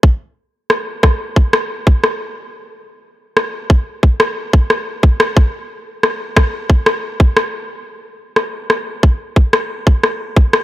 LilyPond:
\new DrumStaff \with { instrumentName = "Drums" } \drummode { \time 4/4 \tempo 4 = 90 bd4 ss8 <bd ss>8 bd16 ss8 bd16 ss4 | r4 ss8 bd8 bd16 ss8 bd16 ss8 bd16 ss16 | bd4 ss8 <bd ss>8 bd16 ss8 bd16 ss4 | r8 ss8 ss8 bd8 bd16 ss8 bd16 ss8 bd16 ss16 | }